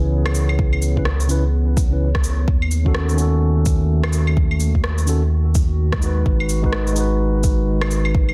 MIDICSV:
0, 0, Header, 1, 5, 480
1, 0, Start_track
1, 0, Key_signature, 4, "minor"
1, 0, Tempo, 472441
1, 594, Time_signature, 4, 2, 24, 8
1, 8472, End_track
2, 0, Start_track
2, 0, Title_t, "Tine electric piano"
2, 0, Program_c, 0, 4
2, 0, Note_on_c, 0, 49, 89
2, 0, Note_on_c, 0, 61, 85
2, 0, Note_on_c, 0, 64, 85
2, 0, Note_on_c, 0, 71, 100
2, 925, Note_off_c, 0, 49, 0
2, 939, Note_off_c, 0, 61, 0
2, 954, Note_off_c, 0, 64, 0
2, 962, Note_on_c, 0, 49, 79
2, 967, Note_off_c, 0, 71, 0
2, 977, Note_on_c, 0, 61, 72
2, 990, Note_on_c, 0, 64, 73
2, 1002, Note_on_c, 0, 71, 89
2, 1059, Note_off_c, 0, 49, 0
2, 1066, Note_off_c, 0, 61, 0
2, 1073, Note_off_c, 0, 64, 0
2, 1078, Note_off_c, 0, 71, 0
2, 1289, Note_on_c, 0, 49, 87
2, 1306, Note_on_c, 0, 61, 81
2, 1321, Note_on_c, 0, 64, 79
2, 1332, Note_on_c, 0, 71, 97
2, 1440, Note_off_c, 0, 49, 0
2, 1448, Note_off_c, 0, 61, 0
2, 1456, Note_off_c, 0, 64, 0
2, 1461, Note_off_c, 0, 71, 0
2, 1921, Note_on_c, 0, 49, 70
2, 1933, Note_on_c, 0, 61, 63
2, 1950, Note_on_c, 0, 64, 63
2, 1962, Note_on_c, 0, 71, 73
2, 2097, Note_off_c, 0, 49, 0
2, 2103, Note_off_c, 0, 61, 0
2, 2111, Note_off_c, 0, 64, 0
2, 2118, Note_off_c, 0, 71, 0
2, 2885, Note_on_c, 0, 51, 91
2, 2898, Note_on_c, 0, 61, 80
2, 2911, Note_on_c, 0, 66, 84
2, 2926, Note_on_c, 0, 69, 98
2, 3180, Note_off_c, 0, 51, 0
2, 3192, Note_on_c, 0, 51, 92
2, 3207, Note_off_c, 0, 61, 0
2, 3217, Note_off_c, 0, 66, 0
2, 3219, Note_on_c, 0, 61, 85
2, 3224, Note_off_c, 0, 69, 0
2, 3247, Note_on_c, 0, 66, 82
2, 3271, Note_on_c, 0, 69, 101
2, 4766, Note_off_c, 0, 51, 0
2, 4779, Note_off_c, 0, 61, 0
2, 4793, Note_off_c, 0, 66, 0
2, 4805, Note_off_c, 0, 69, 0
2, 5138, Note_on_c, 0, 51, 86
2, 5147, Note_on_c, 0, 61, 81
2, 5164, Note_on_c, 0, 66, 78
2, 5176, Note_on_c, 0, 69, 91
2, 5284, Note_off_c, 0, 51, 0
2, 5289, Note_off_c, 0, 61, 0
2, 5297, Note_off_c, 0, 66, 0
2, 5303, Note_off_c, 0, 69, 0
2, 6072, Note_on_c, 0, 56, 89
2, 6100, Note_on_c, 0, 63, 77
2, 6126, Note_on_c, 0, 66, 82
2, 6154, Note_on_c, 0, 71, 93
2, 6686, Note_off_c, 0, 56, 0
2, 6699, Note_off_c, 0, 63, 0
2, 6713, Note_off_c, 0, 66, 0
2, 6727, Note_off_c, 0, 71, 0
2, 6729, Note_on_c, 0, 56, 89
2, 6738, Note_on_c, 0, 63, 83
2, 6751, Note_on_c, 0, 66, 80
2, 6767, Note_on_c, 0, 71, 99
2, 7025, Note_off_c, 0, 56, 0
2, 7037, Note_on_c, 0, 56, 91
2, 7050, Note_off_c, 0, 63, 0
2, 7057, Note_off_c, 0, 66, 0
2, 7064, Note_on_c, 0, 63, 87
2, 7065, Note_off_c, 0, 71, 0
2, 7090, Note_on_c, 0, 66, 84
2, 7116, Note_on_c, 0, 71, 103
2, 8472, Note_off_c, 0, 56, 0
2, 8472, Note_off_c, 0, 63, 0
2, 8472, Note_off_c, 0, 66, 0
2, 8472, Note_off_c, 0, 71, 0
2, 8472, End_track
3, 0, Start_track
3, 0, Title_t, "Ambient pad"
3, 0, Program_c, 1, 92
3, 0, Note_on_c, 1, 52, 95
3, 0, Note_on_c, 1, 59, 88
3, 0, Note_on_c, 1, 68, 77
3, 0, Note_on_c, 1, 73, 82
3, 2514, Note_on_c, 1, 51, 72
3, 2516, Note_off_c, 1, 52, 0
3, 2607, Note_on_c, 1, 57, 80
3, 3140, Note_off_c, 1, 68, 0
3, 3498, Note_on_c, 1, 66, 80
3, 4071, Note_off_c, 1, 59, 0
3, 6354, Note_off_c, 1, 57, 0
3, 6564, Note_on_c, 1, 56, 73
3, 7272, Note_off_c, 1, 73, 0
3, 7466, Note_on_c, 1, 71, 65
3, 8472, Note_off_c, 1, 51, 0
3, 8472, Note_off_c, 1, 56, 0
3, 8472, Note_off_c, 1, 66, 0
3, 8472, Note_off_c, 1, 71, 0
3, 8472, End_track
4, 0, Start_track
4, 0, Title_t, "Sub bass"
4, 0, Program_c, 2, 38
4, 0, Note_on_c, 2, 37, 88
4, 2497, Note_off_c, 2, 37, 0
4, 2517, Note_on_c, 2, 39, 89
4, 6338, Note_off_c, 2, 39, 0
4, 6359, Note_on_c, 2, 32, 89
4, 8472, Note_off_c, 2, 32, 0
4, 8472, End_track
5, 0, Start_track
5, 0, Title_t, "Drums"
5, 260, Note_on_c, 9, 37, 99
5, 260, Note_on_c, 9, 75, 66
5, 352, Note_on_c, 9, 82, 55
5, 362, Note_off_c, 9, 37, 0
5, 362, Note_off_c, 9, 75, 0
5, 453, Note_off_c, 9, 82, 0
5, 500, Note_on_c, 9, 75, 56
5, 598, Note_on_c, 9, 36, 112
5, 601, Note_off_c, 9, 75, 0
5, 700, Note_off_c, 9, 36, 0
5, 739, Note_on_c, 9, 75, 51
5, 833, Note_on_c, 9, 82, 56
5, 841, Note_off_c, 9, 75, 0
5, 935, Note_off_c, 9, 82, 0
5, 986, Note_on_c, 9, 36, 61
5, 1070, Note_on_c, 9, 37, 97
5, 1088, Note_off_c, 9, 36, 0
5, 1171, Note_off_c, 9, 37, 0
5, 1221, Note_on_c, 9, 82, 30
5, 1314, Note_off_c, 9, 82, 0
5, 1314, Note_on_c, 9, 82, 52
5, 1415, Note_off_c, 9, 82, 0
5, 1798, Note_on_c, 9, 36, 105
5, 1799, Note_on_c, 9, 82, 56
5, 1900, Note_off_c, 9, 36, 0
5, 1900, Note_off_c, 9, 82, 0
5, 2183, Note_on_c, 9, 37, 100
5, 2185, Note_on_c, 9, 36, 108
5, 2274, Note_on_c, 9, 82, 56
5, 2284, Note_off_c, 9, 37, 0
5, 2286, Note_off_c, 9, 36, 0
5, 2375, Note_off_c, 9, 82, 0
5, 2517, Note_on_c, 9, 36, 113
5, 2619, Note_off_c, 9, 36, 0
5, 2663, Note_on_c, 9, 75, 51
5, 2755, Note_on_c, 9, 82, 52
5, 2765, Note_off_c, 9, 75, 0
5, 2856, Note_off_c, 9, 82, 0
5, 2906, Note_on_c, 9, 36, 59
5, 2993, Note_on_c, 9, 37, 103
5, 3007, Note_off_c, 9, 36, 0
5, 3094, Note_off_c, 9, 37, 0
5, 3140, Note_on_c, 9, 82, 30
5, 3232, Note_off_c, 9, 82, 0
5, 3232, Note_on_c, 9, 82, 50
5, 3334, Note_off_c, 9, 82, 0
5, 3713, Note_on_c, 9, 82, 53
5, 3719, Note_on_c, 9, 36, 99
5, 3815, Note_off_c, 9, 82, 0
5, 3820, Note_off_c, 9, 36, 0
5, 4100, Note_on_c, 9, 37, 106
5, 4100, Note_on_c, 9, 75, 59
5, 4193, Note_on_c, 9, 82, 54
5, 4202, Note_off_c, 9, 37, 0
5, 4202, Note_off_c, 9, 75, 0
5, 4295, Note_off_c, 9, 82, 0
5, 4342, Note_on_c, 9, 75, 54
5, 4438, Note_on_c, 9, 36, 115
5, 4443, Note_off_c, 9, 75, 0
5, 4540, Note_off_c, 9, 36, 0
5, 4583, Note_on_c, 9, 75, 46
5, 4672, Note_on_c, 9, 82, 52
5, 4684, Note_off_c, 9, 75, 0
5, 4773, Note_off_c, 9, 82, 0
5, 4826, Note_on_c, 9, 36, 57
5, 4915, Note_on_c, 9, 37, 102
5, 4928, Note_off_c, 9, 36, 0
5, 5016, Note_off_c, 9, 37, 0
5, 5060, Note_on_c, 9, 82, 30
5, 5154, Note_off_c, 9, 82, 0
5, 5154, Note_on_c, 9, 82, 49
5, 5255, Note_off_c, 9, 82, 0
5, 5637, Note_on_c, 9, 82, 50
5, 5640, Note_on_c, 9, 36, 105
5, 5738, Note_off_c, 9, 82, 0
5, 5741, Note_off_c, 9, 36, 0
5, 6019, Note_on_c, 9, 37, 104
5, 6027, Note_on_c, 9, 36, 105
5, 6117, Note_on_c, 9, 82, 51
5, 6121, Note_off_c, 9, 37, 0
5, 6129, Note_off_c, 9, 36, 0
5, 6219, Note_off_c, 9, 82, 0
5, 6358, Note_on_c, 9, 36, 107
5, 6460, Note_off_c, 9, 36, 0
5, 6505, Note_on_c, 9, 75, 49
5, 6595, Note_on_c, 9, 82, 51
5, 6606, Note_off_c, 9, 75, 0
5, 6697, Note_off_c, 9, 82, 0
5, 6746, Note_on_c, 9, 36, 55
5, 6833, Note_on_c, 9, 37, 99
5, 6847, Note_off_c, 9, 36, 0
5, 6935, Note_off_c, 9, 37, 0
5, 6982, Note_on_c, 9, 82, 28
5, 7072, Note_off_c, 9, 82, 0
5, 7072, Note_on_c, 9, 82, 50
5, 7174, Note_off_c, 9, 82, 0
5, 7553, Note_on_c, 9, 82, 50
5, 7556, Note_on_c, 9, 36, 98
5, 7655, Note_off_c, 9, 82, 0
5, 7658, Note_off_c, 9, 36, 0
5, 7940, Note_on_c, 9, 37, 100
5, 7940, Note_on_c, 9, 75, 60
5, 8034, Note_on_c, 9, 82, 50
5, 8041, Note_off_c, 9, 37, 0
5, 8041, Note_off_c, 9, 75, 0
5, 8136, Note_off_c, 9, 82, 0
5, 8179, Note_on_c, 9, 75, 53
5, 8276, Note_on_c, 9, 36, 110
5, 8281, Note_off_c, 9, 75, 0
5, 8378, Note_off_c, 9, 36, 0
5, 8419, Note_on_c, 9, 75, 51
5, 8472, Note_off_c, 9, 75, 0
5, 8472, End_track
0, 0, End_of_file